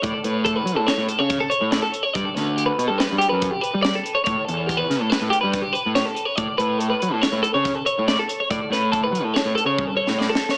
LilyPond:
<<
  \new Staff \with { instrumentName = "Clean electric guitar" } { \time 5/4 \key d \major \tempo 4 = 142 d''8 b'8 a'16 b'8 a'16 cis''8 a'16 cis''8 a'16 cis''8 d''16 a'8 cis''16 | d''8 b'8 g'16 b'8 a'16 b'8 g'16 b'8 g'16 b'8 d''16 a'8 cis''16 | cis''8 a'8 g'16 b'8 a'16 b'8 g'16 b'8 g'16 b'8 cis''16 a'8 cis''16 | d''8 b'8 a'16 b'8 a'16 cis''8 a'16 cis''8 a'16 cis''8 d''16 a'8 cis''16 |
d''8 b'8 a'16 b'8 a'16 cis''8 a'16 cis''8 a'16 cis''8 d''16 a'8 cis''16 | }
  \new Staff \with { instrumentName = "Picked electric bass" } { \clef bass \time 5/4 \key d \major a,16 r16 a,4 fis16 a,16 r16 a,16 r16 cis8 r8 a,8 r8. | g,16 r16 d,4 b,16 g,16 r16 g,16 r16 fis,8 r8 g8 r8. | a,16 r16 e,4 cis16 a,16 r16 a,16 r16 g,8 r8 a,8 r8. | a,16 r16 a,4 fis16 a,16 r16 a,16 r16 cis8 r8 a,8 r8. |
a,16 r16 a,4 fis16 a,16 r16 a,16 r16 cis8 r8 a,8 r8. | }
  \new DrumStaff \with { instrumentName = "Drums" } \drummode { \time 5/4 <hh bd>8 hh8 <hh bd>8 hh8 <hh sn>8 hh8 <hh bd sn>8 hh8 <hh sn>8 hh8 | <hh bd>8 <hh sn>8 hh8 hh8 <hh sn>8 hh8 <hh bd>8 hh8 <hh sn>8 hh8 | <hh bd>8 hh8 <hh bd>8 <hh sn>8 <hh sn>8 hh8 <hh bd sn>8 hh8 <hh sn>8 hh8 | <hh bd>8 hh8 hh8 hh8 <hh sn>8 hh8 <hh bd sn>8 hh8 <hh sn>8 hh8 |
<hh bd>8 <hh sn>8 <hh bd>8 hh8 <hh sn>8 hh8 \tuplet 3/2 { <bd tommh>8 r8 sn8 sn8 sn8 sn8 } | }
>>